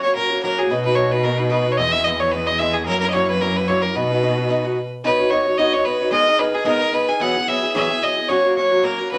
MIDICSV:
0, 0, Header, 1, 4, 480
1, 0, Start_track
1, 0, Key_signature, 5, "major"
1, 0, Tempo, 271739
1, 1224, Time_signature, 4, 2, 24, 8
1, 16219, End_track
2, 0, Start_track
2, 0, Title_t, "Fiddle"
2, 0, Program_c, 0, 110
2, 47, Note_on_c, 0, 73, 79
2, 249, Note_off_c, 0, 73, 0
2, 268, Note_on_c, 0, 70, 87
2, 713, Note_off_c, 0, 70, 0
2, 752, Note_on_c, 0, 70, 83
2, 1036, Note_on_c, 0, 68, 77
2, 1062, Note_off_c, 0, 70, 0
2, 1254, Note_on_c, 0, 71, 76
2, 1281, Note_off_c, 0, 68, 0
2, 1486, Note_off_c, 0, 71, 0
2, 1496, Note_on_c, 0, 71, 101
2, 1680, Note_on_c, 0, 73, 74
2, 1707, Note_off_c, 0, 71, 0
2, 1965, Note_on_c, 0, 71, 83
2, 1992, Note_off_c, 0, 73, 0
2, 2187, Note_on_c, 0, 70, 78
2, 2214, Note_off_c, 0, 71, 0
2, 2439, Note_on_c, 0, 71, 85
2, 2465, Note_off_c, 0, 70, 0
2, 2653, Note_off_c, 0, 71, 0
2, 2664, Note_on_c, 0, 71, 89
2, 3031, Note_on_c, 0, 73, 79
2, 3057, Note_off_c, 0, 71, 0
2, 3133, Note_on_c, 0, 75, 111
2, 3160, Note_off_c, 0, 73, 0
2, 3388, Note_on_c, 0, 76, 120
2, 3415, Note_off_c, 0, 75, 0
2, 3602, Note_on_c, 0, 75, 91
2, 3628, Note_off_c, 0, 76, 0
2, 3879, Note_on_c, 0, 73, 81
2, 3905, Note_off_c, 0, 75, 0
2, 4089, Note_on_c, 0, 71, 87
2, 4116, Note_off_c, 0, 73, 0
2, 4357, Note_on_c, 0, 75, 96
2, 4383, Note_off_c, 0, 71, 0
2, 4572, Note_on_c, 0, 76, 92
2, 4598, Note_off_c, 0, 75, 0
2, 4830, Note_on_c, 0, 68, 68
2, 4856, Note_off_c, 0, 76, 0
2, 5030, Note_off_c, 0, 68, 0
2, 5040, Note_on_c, 0, 70, 95
2, 5279, Note_off_c, 0, 70, 0
2, 5289, Note_on_c, 0, 70, 93
2, 5456, Note_off_c, 0, 70, 0
2, 5472, Note_on_c, 0, 75, 72
2, 5533, Note_on_c, 0, 73, 94
2, 5560, Note_off_c, 0, 75, 0
2, 5743, Note_off_c, 0, 73, 0
2, 5743, Note_on_c, 0, 73, 58
2, 5801, Note_on_c, 0, 71, 99
2, 5827, Note_off_c, 0, 73, 0
2, 6020, Note_on_c, 0, 70, 88
2, 6046, Note_off_c, 0, 71, 0
2, 6292, Note_on_c, 0, 71, 98
2, 6319, Note_off_c, 0, 70, 0
2, 6491, Note_on_c, 0, 73, 89
2, 6518, Note_off_c, 0, 71, 0
2, 6741, Note_on_c, 0, 70, 76
2, 6768, Note_off_c, 0, 73, 0
2, 6980, Note_on_c, 0, 71, 94
2, 7007, Note_off_c, 0, 70, 0
2, 8675, Note_off_c, 0, 71, 0
2, 8909, Note_on_c, 0, 71, 96
2, 9369, Note_on_c, 0, 73, 85
2, 9395, Note_off_c, 0, 71, 0
2, 9846, Note_on_c, 0, 75, 98
2, 9873, Note_off_c, 0, 73, 0
2, 10130, Note_on_c, 0, 73, 90
2, 10157, Note_off_c, 0, 75, 0
2, 10335, Note_on_c, 0, 71, 93
2, 10362, Note_off_c, 0, 73, 0
2, 10797, Note_off_c, 0, 71, 0
2, 10808, Note_on_c, 0, 75, 103
2, 11283, Note_on_c, 0, 71, 82
2, 11309, Note_off_c, 0, 75, 0
2, 11558, Note_on_c, 0, 68, 99
2, 11585, Note_off_c, 0, 71, 0
2, 11763, Note_off_c, 0, 68, 0
2, 11774, Note_on_c, 0, 70, 97
2, 12252, Note_on_c, 0, 71, 94
2, 12278, Note_off_c, 0, 70, 0
2, 12514, Note_on_c, 0, 80, 84
2, 12540, Note_off_c, 0, 71, 0
2, 12744, Note_on_c, 0, 78, 94
2, 12770, Note_off_c, 0, 80, 0
2, 13219, Note_on_c, 0, 76, 91
2, 13245, Note_off_c, 0, 78, 0
2, 13690, Note_off_c, 0, 76, 0
2, 13701, Note_on_c, 0, 76, 93
2, 14190, Note_on_c, 0, 75, 81
2, 14217, Note_off_c, 0, 76, 0
2, 14637, Note_on_c, 0, 73, 87
2, 14663, Note_off_c, 0, 75, 0
2, 15117, Note_off_c, 0, 73, 0
2, 15127, Note_on_c, 0, 73, 80
2, 15616, Note_on_c, 0, 70, 88
2, 15643, Note_off_c, 0, 73, 0
2, 16082, Note_off_c, 0, 70, 0
2, 16093, Note_on_c, 0, 71, 87
2, 16219, Note_off_c, 0, 71, 0
2, 16219, End_track
3, 0, Start_track
3, 0, Title_t, "Steel-string acoustic guitar"
3, 0, Program_c, 1, 25
3, 40, Note_on_c, 1, 66, 46
3, 52, Note_on_c, 1, 61, 43
3, 75, Note_on_c, 1, 58, 39
3, 261, Note_off_c, 1, 66, 0
3, 264, Note_off_c, 1, 58, 0
3, 267, Note_off_c, 1, 61, 0
3, 271, Note_on_c, 1, 54, 55
3, 285, Note_on_c, 1, 58, 54
3, 287, Note_on_c, 1, 61, 66
3, 306, Note_on_c, 1, 66, 66
3, 514, Note_off_c, 1, 66, 0
3, 528, Note_off_c, 1, 54, 0
3, 535, Note_off_c, 1, 58, 0
3, 536, Note_off_c, 1, 61, 0
3, 536, Note_on_c, 1, 66, 43
3, 559, Note_on_c, 1, 61, 48
3, 579, Note_on_c, 1, 58, 38
3, 749, Note_off_c, 1, 66, 0
3, 751, Note_off_c, 1, 58, 0
3, 761, Note_off_c, 1, 61, 0
3, 771, Note_on_c, 1, 54, 82
3, 772, Note_on_c, 1, 58, 69
3, 784, Note_on_c, 1, 61, 67
3, 794, Note_on_c, 1, 66, 90
3, 1013, Note_off_c, 1, 66, 0
3, 1018, Note_off_c, 1, 54, 0
3, 1019, Note_off_c, 1, 58, 0
3, 1025, Note_off_c, 1, 61, 0
3, 1035, Note_on_c, 1, 66, 49
3, 1052, Note_on_c, 1, 61, 37
3, 1080, Note_on_c, 1, 58, 32
3, 1238, Note_on_c, 1, 59, 60
3, 1239, Note_off_c, 1, 66, 0
3, 1240, Note_off_c, 1, 58, 0
3, 1247, Note_off_c, 1, 61, 0
3, 1247, Note_on_c, 1, 63, 73
3, 1259, Note_on_c, 1, 66, 67
3, 1268, Note_on_c, 1, 71, 81
3, 1472, Note_off_c, 1, 71, 0
3, 1492, Note_off_c, 1, 59, 0
3, 1493, Note_on_c, 1, 71, 53
3, 1496, Note_off_c, 1, 63, 0
3, 1502, Note_off_c, 1, 66, 0
3, 1521, Note_on_c, 1, 66, 46
3, 1529, Note_on_c, 1, 63, 40
3, 1680, Note_off_c, 1, 63, 0
3, 1693, Note_on_c, 1, 59, 73
3, 1697, Note_off_c, 1, 66, 0
3, 1700, Note_off_c, 1, 71, 0
3, 1702, Note_on_c, 1, 63, 62
3, 1718, Note_on_c, 1, 66, 75
3, 1721, Note_on_c, 1, 71, 74
3, 1927, Note_off_c, 1, 71, 0
3, 1948, Note_on_c, 1, 71, 51
3, 1958, Note_off_c, 1, 66, 0
3, 1959, Note_off_c, 1, 59, 0
3, 1963, Note_off_c, 1, 63, 0
3, 1979, Note_on_c, 1, 66, 49
3, 1989, Note_on_c, 1, 63, 44
3, 2164, Note_off_c, 1, 63, 0
3, 2166, Note_on_c, 1, 59, 58
3, 2175, Note_off_c, 1, 71, 0
3, 2179, Note_off_c, 1, 66, 0
3, 2185, Note_on_c, 1, 63, 55
3, 2200, Note_on_c, 1, 66, 61
3, 2211, Note_on_c, 1, 71, 67
3, 2400, Note_off_c, 1, 71, 0
3, 2418, Note_off_c, 1, 66, 0
3, 2421, Note_on_c, 1, 71, 44
3, 2435, Note_off_c, 1, 59, 0
3, 2436, Note_off_c, 1, 63, 0
3, 2439, Note_on_c, 1, 66, 40
3, 2457, Note_on_c, 1, 63, 40
3, 2638, Note_off_c, 1, 63, 0
3, 2647, Note_on_c, 1, 59, 73
3, 2649, Note_off_c, 1, 66, 0
3, 2652, Note_off_c, 1, 71, 0
3, 2659, Note_on_c, 1, 63, 70
3, 2670, Note_on_c, 1, 66, 84
3, 2681, Note_on_c, 1, 71, 79
3, 2903, Note_off_c, 1, 71, 0
3, 2915, Note_off_c, 1, 59, 0
3, 2922, Note_off_c, 1, 63, 0
3, 2924, Note_on_c, 1, 71, 47
3, 2927, Note_off_c, 1, 66, 0
3, 2946, Note_on_c, 1, 66, 38
3, 2971, Note_on_c, 1, 63, 38
3, 3143, Note_off_c, 1, 71, 0
3, 3151, Note_on_c, 1, 52, 72
3, 3154, Note_off_c, 1, 66, 0
3, 3165, Note_off_c, 1, 63, 0
3, 3169, Note_on_c, 1, 59, 77
3, 3172, Note_on_c, 1, 56, 69
3, 3175, Note_on_c, 1, 64, 75
3, 3398, Note_off_c, 1, 64, 0
3, 3407, Note_off_c, 1, 52, 0
3, 3416, Note_off_c, 1, 59, 0
3, 3418, Note_off_c, 1, 56, 0
3, 3419, Note_on_c, 1, 64, 43
3, 3439, Note_on_c, 1, 59, 39
3, 3458, Note_on_c, 1, 56, 42
3, 3618, Note_off_c, 1, 56, 0
3, 3627, Note_off_c, 1, 59, 0
3, 3630, Note_off_c, 1, 64, 0
3, 3630, Note_on_c, 1, 52, 72
3, 3639, Note_on_c, 1, 56, 66
3, 3648, Note_on_c, 1, 59, 76
3, 3667, Note_on_c, 1, 64, 76
3, 3875, Note_off_c, 1, 64, 0
3, 3887, Note_off_c, 1, 52, 0
3, 3891, Note_off_c, 1, 56, 0
3, 3895, Note_off_c, 1, 59, 0
3, 3896, Note_on_c, 1, 64, 55
3, 3927, Note_on_c, 1, 59, 47
3, 3941, Note_on_c, 1, 56, 42
3, 4105, Note_off_c, 1, 56, 0
3, 4108, Note_off_c, 1, 64, 0
3, 4109, Note_on_c, 1, 52, 68
3, 4124, Note_off_c, 1, 59, 0
3, 4126, Note_on_c, 1, 56, 60
3, 4147, Note_on_c, 1, 59, 60
3, 4148, Note_on_c, 1, 64, 66
3, 4352, Note_off_c, 1, 64, 0
3, 4365, Note_off_c, 1, 52, 0
3, 4374, Note_off_c, 1, 56, 0
3, 4374, Note_off_c, 1, 59, 0
3, 4374, Note_on_c, 1, 64, 47
3, 4395, Note_on_c, 1, 59, 40
3, 4425, Note_on_c, 1, 56, 38
3, 4579, Note_off_c, 1, 56, 0
3, 4586, Note_off_c, 1, 64, 0
3, 4597, Note_off_c, 1, 59, 0
3, 4600, Note_on_c, 1, 52, 63
3, 4600, Note_on_c, 1, 56, 75
3, 4622, Note_on_c, 1, 64, 76
3, 4625, Note_on_c, 1, 59, 81
3, 4831, Note_off_c, 1, 64, 0
3, 4850, Note_off_c, 1, 56, 0
3, 4851, Note_off_c, 1, 52, 0
3, 4853, Note_on_c, 1, 64, 36
3, 4854, Note_off_c, 1, 59, 0
3, 4876, Note_on_c, 1, 59, 43
3, 5062, Note_on_c, 1, 54, 72
3, 5065, Note_off_c, 1, 64, 0
3, 5071, Note_on_c, 1, 58, 75
3, 5073, Note_off_c, 1, 59, 0
3, 5081, Note_on_c, 1, 61, 68
3, 5096, Note_on_c, 1, 64, 79
3, 5298, Note_off_c, 1, 64, 0
3, 5320, Note_on_c, 1, 64, 45
3, 5321, Note_off_c, 1, 54, 0
3, 5325, Note_off_c, 1, 61, 0
3, 5326, Note_off_c, 1, 58, 0
3, 5346, Note_on_c, 1, 61, 46
3, 5367, Note_on_c, 1, 58, 39
3, 5531, Note_off_c, 1, 58, 0
3, 5534, Note_on_c, 1, 54, 74
3, 5537, Note_off_c, 1, 61, 0
3, 5538, Note_off_c, 1, 64, 0
3, 5553, Note_on_c, 1, 58, 80
3, 5558, Note_on_c, 1, 61, 83
3, 5566, Note_on_c, 1, 64, 76
3, 5783, Note_off_c, 1, 64, 0
3, 5797, Note_off_c, 1, 54, 0
3, 5804, Note_on_c, 1, 64, 55
3, 5806, Note_off_c, 1, 58, 0
3, 5809, Note_off_c, 1, 61, 0
3, 5826, Note_on_c, 1, 61, 45
3, 5840, Note_on_c, 1, 58, 43
3, 5996, Note_off_c, 1, 58, 0
3, 6005, Note_on_c, 1, 54, 59
3, 6017, Note_on_c, 1, 58, 60
3, 6018, Note_off_c, 1, 61, 0
3, 6020, Note_off_c, 1, 64, 0
3, 6039, Note_on_c, 1, 61, 66
3, 6046, Note_on_c, 1, 64, 67
3, 6258, Note_off_c, 1, 64, 0
3, 6272, Note_off_c, 1, 54, 0
3, 6277, Note_off_c, 1, 58, 0
3, 6277, Note_off_c, 1, 61, 0
3, 6279, Note_on_c, 1, 64, 44
3, 6299, Note_on_c, 1, 61, 38
3, 6315, Note_on_c, 1, 58, 36
3, 6496, Note_on_c, 1, 54, 67
3, 6497, Note_off_c, 1, 64, 0
3, 6500, Note_off_c, 1, 58, 0
3, 6507, Note_off_c, 1, 61, 0
3, 6521, Note_on_c, 1, 58, 77
3, 6522, Note_on_c, 1, 64, 81
3, 6526, Note_on_c, 1, 61, 69
3, 6746, Note_off_c, 1, 64, 0
3, 6757, Note_off_c, 1, 54, 0
3, 6767, Note_on_c, 1, 64, 42
3, 6769, Note_off_c, 1, 58, 0
3, 6772, Note_off_c, 1, 61, 0
3, 6792, Note_on_c, 1, 61, 42
3, 6813, Note_on_c, 1, 58, 34
3, 6967, Note_on_c, 1, 59, 66
3, 6977, Note_off_c, 1, 58, 0
3, 6981, Note_off_c, 1, 64, 0
3, 6982, Note_off_c, 1, 61, 0
3, 6984, Note_on_c, 1, 63, 68
3, 6989, Note_on_c, 1, 66, 78
3, 7006, Note_on_c, 1, 71, 66
3, 7232, Note_off_c, 1, 59, 0
3, 7238, Note_off_c, 1, 71, 0
3, 7240, Note_off_c, 1, 63, 0
3, 7242, Note_off_c, 1, 66, 0
3, 7259, Note_on_c, 1, 71, 46
3, 7271, Note_on_c, 1, 66, 38
3, 7290, Note_on_c, 1, 63, 39
3, 7457, Note_off_c, 1, 63, 0
3, 7458, Note_off_c, 1, 66, 0
3, 7458, Note_on_c, 1, 59, 72
3, 7466, Note_off_c, 1, 71, 0
3, 7478, Note_on_c, 1, 63, 70
3, 7479, Note_on_c, 1, 66, 72
3, 7491, Note_on_c, 1, 71, 75
3, 7705, Note_off_c, 1, 71, 0
3, 7716, Note_off_c, 1, 59, 0
3, 7726, Note_on_c, 1, 71, 49
3, 7727, Note_off_c, 1, 63, 0
3, 7727, Note_off_c, 1, 66, 0
3, 7746, Note_on_c, 1, 66, 46
3, 7759, Note_on_c, 1, 63, 42
3, 7925, Note_on_c, 1, 59, 65
3, 7927, Note_off_c, 1, 63, 0
3, 7931, Note_off_c, 1, 66, 0
3, 7939, Note_off_c, 1, 71, 0
3, 7948, Note_on_c, 1, 63, 79
3, 7952, Note_on_c, 1, 66, 71
3, 7974, Note_on_c, 1, 71, 68
3, 8187, Note_off_c, 1, 71, 0
3, 8190, Note_off_c, 1, 59, 0
3, 8201, Note_off_c, 1, 63, 0
3, 8203, Note_off_c, 1, 66, 0
3, 8208, Note_on_c, 1, 71, 57
3, 8225, Note_on_c, 1, 66, 45
3, 8234, Note_on_c, 1, 63, 37
3, 8420, Note_off_c, 1, 71, 0
3, 8428, Note_off_c, 1, 66, 0
3, 8432, Note_off_c, 1, 63, 0
3, 8905, Note_on_c, 1, 59, 65
3, 8909, Note_on_c, 1, 63, 67
3, 8917, Note_on_c, 1, 66, 75
3, 8928, Note_on_c, 1, 73, 82
3, 9145, Note_off_c, 1, 73, 0
3, 9159, Note_off_c, 1, 59, 0
3, 9161, Note_off_c, 1, 63, 0
3, 9161, Note_off_c, 1, 66, 0
3, 9166, Note_on_c, 1, 73, 50
3, 9182, Note_on_c, 1, 66, 45
3, 9201, Note_on_c, 1, 63, 44
3, 9360, Note_off_c, 1, 63, 0
3, 9370, Note_on_c, 1, 59, 52
3, 9372, Note_off_c, 1, 66, 0
3, 9378, Note_off_c, 1, 73, 0
3, 9381, Note_on_c, 1, 63, 58
3, 9394, Note_on_c, 1, 66, 61
3, 9411, Note_on_c, 1, 73, 59
3, 9602, Note_off_c, 1, 73, 0
3, 9623, Note_on_c, 1, 73, 47
3, 9631, Note_off_c, 1, 59, 0
3, 9636, Note_off_c, 1, 63, 0
3, 9636, Note_off_c, 1, 66, 0
3, 9657, Note_on_c, 1, 66, 40
3, 9669, Note_on_c, 1, 63, 42
3, 9846, Note_off_c, 1, 73, 0
3, 9848, Note_off_c, 1, 63, 0
3, 9863, Note_off_c, 1, 66, 0
3, 9869, Note_on_c, 1, 63, 88
3, 9874, Note_on_c, 1, 59, 80
3, 9882, Note_on_c, 1, 66, 98
3, 9894, Note_on_c, 1, 73, 82
3, 10105, Note_off_c, 1, 73, 0
3, 10120, Note_off_c, 1, 63, 0
3, 10122, Note_off_c, 1, 59, 0
3, 10126, Note_off_c, 1, 66, 0
3, 10126, Note_on_c, 1, 73, 47
3, 10156, Note_on_c, 1, 66, 44
3, 10174, Note_on_c, 1, 63, 35
3, 10337, Note_off_c, 1, 73, 0
3, 10339, Note_off_c, 1, 63, 0
3, 10352, Note_off_c, 1, 66, 0
3, 10352, Note_on_c, 1, 59, 54
3, 10360, Note_on_c, 1, 63, 55
3, 10382, Note_on_c, 1, 66, 64
3, 10398, Note_on_c, 1, 73, 69
3, 10589, Note_off_c, 1, 73, 0
3, 10601, Note_off_c, 1, 59, 0
3, 10605, Note_off_c, 1, 63, 0
3, 10609, Note_off_c, 1, 66, 0
3, 10610, Note_on_c, 1, 73, 49
3, 10631, Note_on_c, 1, 66, 36
3, 10643, Note_on_c, 1, 63, 38
3, 10786, Note_off_c, 1, 63, 0
3, 10795, Note_on_c, 1, 56, 76
3, 10807, Note_on_c, 1, 59, 62
3, 10808, Note_off_c, 1, 66, 0
3, 10808, Note_on_c, 1, 63, 82
3, 10815, Note_off_c, 1, 73, 0
3, 10815, Note_on_c, 1, 68, 84
3, 10822, Note_on_c, 1, 70, 69
3, 11053, Note_off_c, 1, 70, 0
3, 11063, Note_off_c, 1, 56, 0
3, 11069, Note_off_c, 1, 59, 0
3, 11069, Note_off_c, 1, 63, 0
3, 11069, Note_off_c, 1, 68, 0
3, 11074, Note_on_c, 1, 70, 50
3, 11090, Note_on_c, 1, 68, 43
3, 11115, Note_on_c, 1, 63, 41
3, 11271, Note_off_c, 1, 63, 0
3, 11280, Note_on_c, 1, 59, 51
3, 11291, Note_off_c, 1, 68, 0
3, 11291, Note_off_c, 1, 70, 0
3, 11292, Note_on_c, 1, 63, 65
3, 11312, Note_on_c, 1, 68, 68
3, 11316, Note_on_c, 1, 70, 62
3, 11504, Note_off_c, 1, 70, 0
3, 11526, Note_on_c, 1, 70, 45
3, 11530, Note_off_c, 1, 68, 0
3, 11545, Note_off_c, 1, 59, 0
3, 11546, Note_off_c, 1, 63, 0
3, 11551, Note_on_c, 1, 68, 55
3, 11567, Note_on_c, 1, 63, 44
3, 11735, Note_on_c, 1, 56, 72
3, 11739, Note_off_c, 1, 63, 0
3, 11743, Note_off_c, 1, 68, 0
3, 11746, Note_off_c, 1, 70, 0
3, 11747, Note_on_c, 1, 59, 91
3, 11760, Note_on_c, 1, 63, 94
3, 11764, Note_on_c, 1, 68, 82
3, 11767, Note_on_c, 1, 70, 92
3, 11991, Note_off_c, 1, 70, 0
3, 12008, Note_off_c, 1, 68, 0
3, 12012, Note_on_c, 1, 70, 45
3, 12013, Note_off_c, 1, 56, 0
3, 12019, Note_off_c, 1, 59, 0
3, 12025, Note_off_c, 1, 63, 0
3, 12030, Note_on_c, 1, 68, 40
3, 12045, Note_on_c, 1, 63, 36
3, 12215, Note_off_c, 1, 63, 0
3, 12221, Note_on_c, 1, 59, 57
3, 12236, Note_off_c, 1, 68, 0
3, 12236, Note_on_c, 1, 63, 58
3, 12240, Note_off_c, 1, 70, 0
3, 12257, Note_on_c, 1, 68, 64
3, 12262, Note_on_c, 1, 70, 59
3, 12475, Note_off_c, 1, 70, 0
3, 12495, Note_off_c, 1, 68, 0
3, 12496, Note_off_c, 1, 59, 0
3, 12496, Note_on_c, 1, 70, 41
3, 12504, Note_off_c, 1, 63, 0
3, 12516, Note_on_c, 1, 68, 38
3, 12534, Note_on_c, 1, 63, 35
3, 12717, Note_on_c, 1, 52, 78
3, 12723, Note_off_c, 1, 70, 0
3, 12725, Note_off_c, 1, 68, 0
3, 12725, Note_on_c, 1, 54, 73
3, 12732, Note_off_c, 1, 63, 0
3, 12739, Note_on_c, 1, 59, 86
3, 12739, Note_on_c, 1, 64, 72
3, 12746, Note_on_c, 1, 68, 86
3, 12980, Note_off_c, 1, 68, 0
3, 12985, Note_off_c, 1, 52, 0
3, 12989, Note_off_c, 1, 54, 0
3, 12995, Note_off_c, 1, 64, 0
3, 12996, Note_off_c, 1, 59, 0
3, 13001, Note_on_c, 1, 68, 53
3, 13013, Note_on_c, 1, 64, 41
3, 13026, Note_on_c, 1, 59, 42
3, 13192, Note_off_c, 1, 59, 0
3, 13198, Note_off_c, 1, 64, 0
3, 13203, Note_on_c, 1, 54, 58
3, 13213, Note_on_c, 1, 59, 71
3, 13216, Note_off_c, 1, 68, 0
3, 13219, Note_on_c, 1, 64, 68
3, 13240, Note_on_c, 1, 68, 62
3, 13458, Note_off_c, 1, 68, 0
3, 13468, Note_off_c, 1, 54, 0
3, 13474, Note_off_c, 1, 59, 0
3, 13476, Note_off_c, 1, 64, 0
3, 13479, Note_on_c, 1, 68, 54
3, 13498, Note_on_c, 1, 64, 50
3, 13518, Note_on_c, 1, 59, 41
3, 13683, Note_off_c, 1, 68, 0
3, 13683, Note_on_c, 1, 54, 89
3, 13684, Note_off_c, 1, 59, 0
3, 13688, Note_on_c, 1, 52, 81
3, 13691, Note_off_c, 1, 64, 0
3, 13704, Note_on_c, 1, 68, 97
3, 13705, Note_on_c, 1, 59, 78
3, 13712, Note_on_c, 1, 64, 83
3, 13930, Note_off_c, 1, 68, 0
3, 13949, Note_off_c, 1, 54, 0
3, 13951, Note_off_c, 1, 52, 0
3, 13952, Note_off_c, 1, 64, 0
3, 13952, Note_on_c, 1, 68, 51
3, 13960, Note_off_c, 1, 59, 0
3, 13973, Note_on_c, 1, 64, 45
3, 13990, Note_on_c, 1, 59, 40
3, 14152, Note_off_c, 1, 59, 0
3, 14161, Note_off_c, 1, 64, 0
3, 14167, Note_on_c, 1, 54, 54
3, 14172, Note_off_c, 1, 68, 0
3, 14173, Note_on_c, 1, 59, 52
3, 14182, Note_on_c, 1, 64, 61
3, 14204, Note_on_c, 1, 68, 66
3, 14404, Note_off_c, 1, 68, 0
3, 14425, Note_off_c, 1, 64, 0
3, 14425, Note_on_c, 1, 68, 54
3, 14432, Note_off_c, 1, 54, 0
3, 14435, Note_off_c, 1, 59, 0
3, 14446, Note_on_c, 1, 64, 37
3, 14461, Note_on_c, 1, 59, 39
3, 14646, Note_on_c, 1, 54, 72
3, 14648, Note_off_c, 1, 59, 0
3, 14650, Note_off_c, 1, 68, 0
3, 14652, Note_off_c, 1, 64, 0
3, 14655, Note_on_c, 1, 58, 70
3, 14659, Note_on_c, 1, 61, 88
3, 14673, Note_on_c, 1, 66, 80
3, 14884, Note_off_c, 1, 66, 0
3, 14905, Note_on_c, 1, 66, 52
3, 14911, Note_off_c, 1, 61, 0
3, 14912, Note_off_c, 1, 54, 0
3, 14917, Note_off_c, 1, 58, 0
3, 14933, Note_on_c, 1, 61, 44
3, 14945, Note_on_c, 1, 58, 43
3, 15115, Note_off_c, 1, 58, 0
3, 15131, Note_off_c, 1, 66, 0
3, 15134, Note_on_c, 1, 54, 55
3, 15137, Note_on_c, 1, 58, 57
3, 15138, Note_off_c, 1, 61, 0
3, 15159, Note_on_c, 1, 61, 66
3, 15171, Note_on_c, 1, 66, 67
3, 15370, Note_off_c, 1, 66, 0
3, 15391, Note_on_c, 1, 66, 58
3, 15397, Note_off_c, 1, 54, 0
3, 15399, Note_off_c, 1, 58, 0
3, 15400, Note_off_c, 1, 61, 0
3, 15421, Note_on_c, 1, 61, 44
3, 15423, Note_on_c, 1, 58, 36
3, 15590, Note_off_c, 1, 58, 0
3, 15594, Note_on_c, 1, 54, 73
3, 15607, Note_off_c, 1, 61, 0
3, 15610, Note_off_c, 1, 66, 0
3, 15611, Note_on_c, 1, 58, 75
3, 15628, Note_on_c, 1, 61, 90
3, 15631, Note_on_c, 1, 66, 89
3, 15862, Note_off_c, 1, 66, 0
3, 15868, Note_off_c, 1, 54, 0
3, 15877, Note_off_c, 1, 58, 0
3, 15882, Note_off_c, 1, 61, 0
3, 15884, Note_on_c, 1, 66, 46
3, 15903, Note_on_c, 1, 61, 44
3, 15923, Note_on_c, 1, 58, 34
3, 16094, Note_off_c, 1, 58, 0
3, 16101, Note_off_c, 1, 61, 0
3, 16103, Note_off_c, 1, 66, 0
3, 16107, Note_on_c, 1, 54, 50
3, 16115, Note_on_c, 1, 58, 55
3, 16122, Note_on_c, 1, 61, 53
3, 16144, Note_on_c, 1, 66, 64
3, 16219, Note_off_c, 1, 54, 0
3, 16219, Note_off_c, 1, 58, 0
3, 16219, Note_off_c, 1, 61, 0
3, 16219, Note_off_c, 1, 66, 0
3, 16219, End_track
4, 0, Start_track
4, 0, Title_t, "Cello"
4, 0, Program_c, 2, 42
4, 1238, Note_on_c, 2, 47, 83
4, 3136, Note_on_c, 2, 40, 77
4, 3162, Note_off_c, 2, 47, 0
4, 5069, Note_on_c, 2, 42, 86
4, 5095, Note_off_c, 2, 40, 0
4, 6990, Note_on_c, 2, 47, 74
4, 7017, Note_off_c, 2, 42, 0
4, 8391, Note_off_c, 2, 47, 0
4, 16219, End_track
0, 0, End_of_file